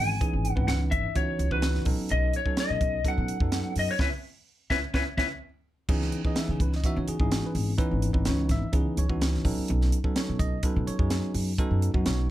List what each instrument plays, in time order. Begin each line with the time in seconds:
Already playing: upright bass G#1, tine electric piano D#3 E3 B3 C#4 G#4, lead electric guitar G#5
0.21 tine electric piano E3 B3 C#4 D#4 G#4, kick, closed hi-hat
0.33 upright bass G#1
0.45 closed hi-hat
0.52 tine electric piano B3 B4, lead electric guitar F#5
0.56 upright bass G#1, tine electric piano E3 C#4 D#4, kick
0.68 upright bass C#2, lead electric guitar F#5, snare, closed hi-hat
0.91 upright bass G#1, lead electric guitar E5, kick, closed hi-hat
1.04 muted upright bass stroke
1.15 upright bass C#2, tine electric piano E3 B3 C#4 D#4 F#4, lead electric guitar C#5, kick, closed hi-hat
1.39 upright bass C#2, closed hi-hat
1.51 tine electric piano E3 B3 C#4 D#4 F#4, lead electric guitar B4, kick
1.62 snare, closed hi-hat
1.74 snare
1.85 upright bass B1, tine electric piano F#3 B3 C#4 D#4 A4, kick, open hi-hat
1.99 muted upright bass stroke
2.09 upright bass B1, lead electric guitar D#5, closed hi-hat
2.33 lead electric guitar C#5, closed hi-hat
2.46 tine electric piano F#3 B3 C#4 D#4 A4, kick
2.57 lead electric guitar D#5, snare, closed hi-hat
2.70 upright bass B2
2.81 upright bass B1, kick, closed hi-hat
3.05 tine electric piano F#3 B3 C#4 D#4 A4, lead electric guitar F#5, kick, closed hi-hat
3.17 upright bass B2
3.28 muted upright bass stroke, closed hi-hat
3.40 upright bass F#2, tine electric piano F#3 B3 C#4 D#4 A4, kick
3.52 snare, closed hi-hat
3.76 upright bass F#2, lead electric guitar D#5, open hi-hat
3.91 lead electric guitar C#5
3.99 upright bass C#2, tine electric piano B3 C#4 E4, lead electric guitar B4 C#5 E5, kick, snare
4.70 upright bass C#2, tine electric piano B3 C#4 E4, lead electric guitar B4 C#5 E5, kick, snare
4.94 upright bass C#2, tine electric piano B3 C#4 E4, lead electric guitar B4 C#5 E5, kick, snare
5.17 upright bass C#2, tine electric piano B3 C#4 E4, lead electric guitar B4 C#5 E5, kick, snare
5.89 upright bass C#2, tine electric piano E3 B3 C#4 D#4 G#4, kick, crash
6.01 snare
6.12 closed hi-hat
6.25 tine electric piano E3 B3 C#4 D#4 G#4 D#5, kick
6.36 tine electric piano E5, snare, closed hi-hat
6.49 upright bass C#3, tine electric piano G#4
6.60 upright bass C#2, tine electric piano B4, kick, closed hi-hat
6.72 tine electric piano D#5, snare
6.84 tine electric piano E3 B3 C#4 D#4 F#4 E5, kick, closed hi-hat
6.96 upright bass C#3, tine electric piano C#5
7.07 tine electric piano G#4, muted upright bass stroke, closed hi-hat
7.19 upright bass G#1, tine electric piano E3 B3 C#4 D#4 E4 G#4, kick
7.32 tine electric piano F#4, snare, closed hi-hat
7.46 tine electric piano B4
7.55 upright bass G#1, open hi-hat
7.78 tine electric piano E3 B3 C#4 D#4 B4, kick, closed hi-hat
7.91 upright bass G#1
8.02 closed hi-hat
8.13 upright bass G#1, tine electric piano E3 B3 C#4 D#4 B4, kick
8.25 upright bass C#2, tine electric piano C#5, snare, closed hi-hat
8.49 upright bass G#1, tine electric piano E5, kick, snare, closed hi-hat
8.62 muted upright bass stroke
8.73 upright bass C#2, tine electric piano E3 B3 C#4 D#4 G#4 B4, kick, closed hi-hat
8.97 upright bass C#2, tine electric piano C#5, closed hi-hat
9.09 tine electric piano E3 B3 C#4 D#4 F#4, kick
9.21 snare, closed hi-hat
9.34 snare
9.45 upright bass B1, tine electric piano F#3 B3 C#4 D#4 A4, kick, open hi-hat
9.58 muted upright bass stroke
9.68 upright bass B1, closed hi-hat
9.81 snare
9.92 closed hi-hat
10.04 tine electric piano F#3 B3 C#4 D#4 A4, kick
10.16 tine electric piano C#5, snare, closed hi-hat
10.29 upright bass B2
10.39 upright bass B1, tine electric piano D#5, kick, closed hi-hat
10.63 tine electric piano F#3 B3 C#4 D#4 A4 B4, kick, closed hi-hat
10.76 upright bass B2
10.87 tine electric piano C#5, muted upright bass stroke, closed hi-hat
10.99 upright bass F#2, tine electric piano F#3 B3 C#4 D#4 G#4, kick
11.10 snare, closed hi-hat
11.34 upright bass F#2, open hi-hat
11.58 tine electric piano F#3 B3 C#4 D#4 A4, kick, closed hi-hat
11.71 upright bass F#2
11.82 closed hi-hat
11.94 upright bass F#2, tine electric piano F#3 B3 C#4 D#4 F#4, kick
12.06 upright bass B1, tine electric piano C#5, snare, closed hi-hat